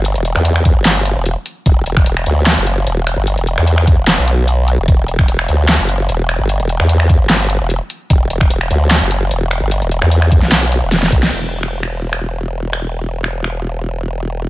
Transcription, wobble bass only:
\new Staff \with { instrumentName = "Wobble bass" } { \clef bass \time 4/4 \key e \minor \tempo 4 = 149 g,,16 e,,8 e,4 g,,4 e,,8 r8. | e,,8 e,,8 e,,8 d,8. fis,,8. e,,8. g,,16~ | g,,16 e,,8 e,4 e,,8 b,,4. e,,16 | e,,8 e,,8 e,,8 d,8. fis,,8. e,,8. g,,16~ |
g,,16 e,,8 e,4 g,,4 e,,8 r8. | e,,8 e,,8 e,,8 d,8. fis,,8. e,,8. g,,16~ | g,,16 e,,8 e,4 b,,4 e,,8. b,,8 | e,,1~ |
e,,1 | }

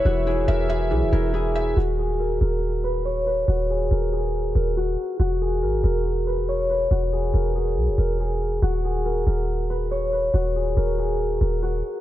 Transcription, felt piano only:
\new Staff \with { instrumentName = "Felt piano" } { \time 4/4 \key ees \phrygian \tempo 4 = 140 <e e' e''>8 e'8 e''8 e''8 e8 e'8 e'8 e''8 | r1 | r1 | r1 |
r1 | r1 | r1 | }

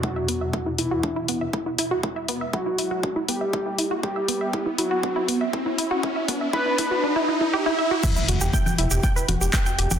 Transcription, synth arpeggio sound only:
\new Staff \with { instrumentName = "Synth arpeggio sound" } { \time 4/4 \key e \minor \tempo 4 = 120 e'16 e''16 b16 e''16 e'16 e'16 e'16 fis'16 d'16 e'16 b16 e''16 e'16 e'16 e'16 fis'16 | e'16 e''16 b16 e''16 e'16 e'16 e'16 fis'16 d'16 e'16 b16 e''16 e'16 e'16 e'16 fis'16 | e'16 e''16 b16 e''16 e'16 e'16 e'16 fis'16 d'16 e'16 b16 e''16 e'16 e'16 e'16 fis'16 | e'16 e''16 b16 e''16 e'16 e'16 e'16 fis'16 d'16 e'16 e'16 e'16 g'16 e'16 e''16 fis'16 |
<e' e''>16 <e' e''>16 <fis' fis''>16 <g' g''>16 <g'' g'''>16 <g'' g'''>16 <e' e''>16 <g' g''>16 <g'' g'''>16 <b' b''>16 <fis' fis''>16 <g' g''>16 <g'' g'''>16 <g'' g'''>16 <g' g''>16 <g' g''>16 | }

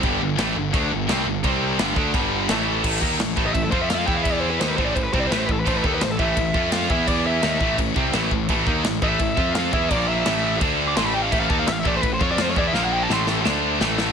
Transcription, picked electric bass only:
\new Staff \with { instrumentName = "Picked electric bass" } { \clef bass \time 4/4 \key a \minor \tempo 4 = 170 g,,8 g,,8 a,,8 g,,8 d,8 g,,8 c,8 g,,8 | c,4 g,,8 d,8 g,,4 a,,4 | a,,8 dis,8 a,,8 a,,8 a,,8 f,4 e,8~ | e,4 dis,8 a,,8 a,,8 c,8 a,,8 a,,8 |
a,,8 dis,8 a,,8 a,,8 a,,8 f,4 e,8~ | e,4 dis,8 a,,8 a,,8 c,8 a,,8 a,,8 | a,,8 dis,8 a,,8 a,,8 a,,8 f,4 e,8 | bes,,4 a,,4 d,4 a,,4 |
a,,8 dis,8 a,,8 a,,8 a,,8 f,4 e,8 | bes,,4 a,,4 d,4 a,,4 | }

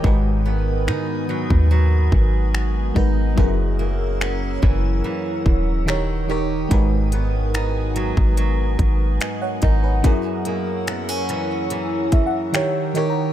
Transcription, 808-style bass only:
\new Staff \with { instrumentName = "808-style bass" } { \clef bass \time 4/4 \key gis \minor \tempo 4 = 72 gis,,4 dis8. dis,8. gis,,4 gis,,8 | fis,,4. fis,,8 r8 dis,,4. | gis,,4.~ gis,,16 gis,,8. gis,,8 r8 gis,,8 | r1 | }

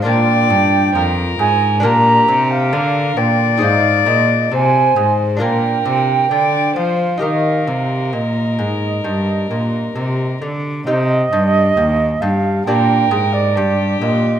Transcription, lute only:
<<
  \new Staff \with { instrumentName = "Lute" } { \time 4/4 \key ees \major \tempo 4 = 67 <d' f' bes'>2 <d' g' bes'>2 | <ees' aes' c''>2 <d' f' bes'>2 | <ees' g' bes'>1 | <ees' g' c''>2 <d' g' d''>2 | }
  \new Staff \with { instrumentName = "Lute" } { \clef bass \time 4/4 \key ees \major bes,8 g,8 f,8 aes,8 bes,8 c8 d8 bes,8 | aes,8 bes,8 c8 aes,8 bes,8 c8 d8 f8 | ees8 c8 bes,8 aes,8 g,8 bes,8 c8 d8 | c8 g,8 ees,8 g,8 bes,8 aes,8 g,8 bes,8 | }
>>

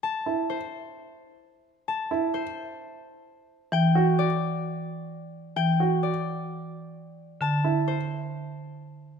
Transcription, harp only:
\new Staff \with { instrumentName = "Harp" } { \time 4/4 \key a \dorian \tempo 4 = 130 a''4 c''2. | a''4 c''2. | g''4 d''2. | g''4 d''2. |
a''4 c''2. | }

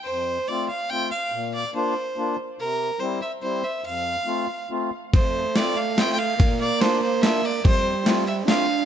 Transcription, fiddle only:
\new Staff \with { instrumentName = "Fiddle" } { \time 3/4 \key f \major \tempo 4 = 143 c''4 d''8 f''8 g''8 f''8~ | f''8 d''8 c''4. r8 | bes'4 c''8 e''8 c''8 e''8 | f''2 r4 |
c''4 d''8 f''8 \tuplet 3/2 { g''8 g''16 f''8.~ } | f''8 d''8 c''8 c''8 e''8 d''8 | c''4 r8 e''8 f''4 | }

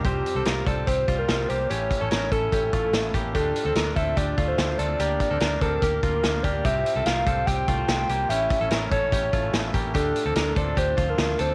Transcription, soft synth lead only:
\new Staff \with { instrumentName = "Soft synth lead" } { \time 4/4 \key d \minor \tempo 4 = 146 g'4. d''8 c''8. bes'8. c''8 | cis''8. cis''8. a'8 a'8 a'4 r8 | a'4. e''8 d''8. c''8. d''8 | d''8. d''8. bes'8 bes'8 bes'4 d''8 |
e''4 f''4 g''4 g''4 | e''4 r8 cis''4. r4 | a'4. d''8 c''8. bes'8. c''8 | }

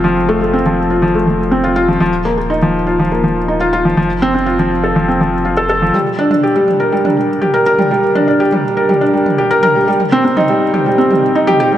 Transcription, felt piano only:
\new Staff \with { instrumentName = "Felt piano" } { \time 4/4 \key g \minor \tempo 4 = 122 f16 r16 a16 a16 c'16 f16 r16 f'16 f16 a16 f16 r16 c'16 f'16 f'16 f16 | f16 r16 bes16 bes16 ees'16 f16 r16 f'16 f16 bes16 f16 r16 ees'16 f'16 f'16 f16 | f16 r16 c'16 c'16 f'16 f16 r16 a'16 f16 c'16 f16 r16 f'16 a'16 a'16 f16 | g16 r16 d'16 d'16 g'16 g16 r16 bes'16 g16 d'16 g16 r16 g'16 bes'16 bes'16 g16 |
g16 r16 d'16 d'16 g'16 g16 r16 bes'16 g16 d'16 g16 r16 g'16 bes'16 bes'16 g16 | g16 r16 c'16 c'16 ees'16 g16 r16 g'16 g16 c'16 g16 r16 ees'16 g'16 g'16 g16 | }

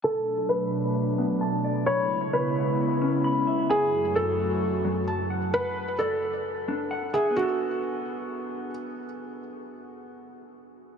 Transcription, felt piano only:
\new Staff \with { instrumentName = "Felt piano" } { \time 4/4 \key b \dorian \tempo 4 = 131 a'4 b'2 r4 | cis''4 b'2. | gis'4 a'2 r4 | b'4 a'2~ a'8 gis'8 |
fis'2. r4 | r1 | }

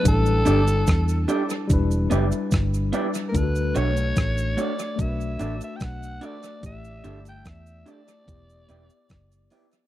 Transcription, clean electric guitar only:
\new Staff \with { instrumentName = "Clean electric guitar" } { \time 4/4 \key a \mixolydian \tempo 4 = 73 r8 <d' g' a' d''>8 r8 <d' g' a' d''>8 r8 <b e' g' d''>8 r8 <b e' g' d''>8 | r8 <a d' fis' cis''>8 r8 <a d' fis' cis''>8 r8 <d' fis' a' d''>8 r8 <d' fis' a' d''>8 | r8 <d' g' a' d''>8 r8 <d' g' a' d''>8 r8 <b e' g' d''>8 r8 <b e' g' d''>8 | }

